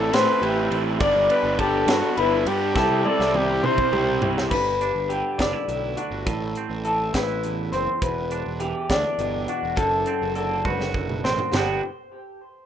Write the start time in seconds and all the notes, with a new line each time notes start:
Already playing: E3 A3 C4 E4 A4 D5
0.12 A2 E3 A3 C4 E4 B4 C5, snare, ride
0.41 A1 E3 A3 C4 E4 G4, ride
0.71 A1 E3 A3 C4 E4, ride
1.00 G1 D3 G3 B3 D4 D5, kick, ride
1.15 G1
1.30 D3 G3 B3 D4 B4, ride
1.43 G1
1.58 D3 G3 B3 D4 G4 A4, kick, ride
1.87 G2 D3 G3 B3 D4 F#4, snare, ride
2.17 G1 D3 G3 B3 D4 E4 B4, ride
2.46 G2 D3 G3 B3 D4 G4, ride
2.75 C2 C3 G3 C4 E4 A4, kick, snare
2.90 C2
3.05 C3 G3 C4 E4 A4 D5, high tom
3.19 C2, snare
3.34 C3 G3 C4 E4 G4, mid tom
3.63 C3 G3 C4 E4 C5, mid tom
3.78 kick
3.92 C2 C3 G3 C4 E4 G4, mid tom
4.21 C2 C3 G3 C4 E4, floor tom
4.38 snare
4.51 G1 G2 B4, kick, crash
4.81 D4, closed hi-hat
4.94 G1
5.09 D3 G4, closed hi-hat
5.38 F#1 D4 D5, kick, snare, closed hi-hat
5.53 E4
5.68 B1 D2, closed hi-hat
5.97 D4 F#4, closed hi-hat
6.11 G1
6.26 A1 A2 A4, kick, closed hi-hat
6.56 C4, closed hi-hat
6.70 A1
6.85 E3 A4, closed hi-hat
7.14 A1 E4 B4, kick, snare, closed hi-hat
7.44 E2, closed hi-hat
7.72 F#1 C4 C5, closed hi-hat
8.01 E1 E2 B4, kick, closed hi-hat
8.31 D4, closed hi-hat
8.46 E1
8.60 E3 G4, closed hi-hat
8.89 D2 D4 D5, kick, snare, closed hi-hat
9.19 G1 B2, closed hi-hat
9.48 D4 F#4, closed hi-hat
9.63 E1
9.77 F#1 F#2 A4, kick, closed hi-hat
10.06 C4, closed hi-hat
10.22 F#1
10.35 D3 A4, closed hi-hat
10.65 F#1 F#4 B4, kick, high tom
10.81 snare
10.94 F#2, kick
11.09 mid tom
11.24 A1 C4 C5, snare
11.39 floor tom
11.53 G1 G2 D3 B3 D4 G4, snare, floor tom, ride bell
11.57 F#4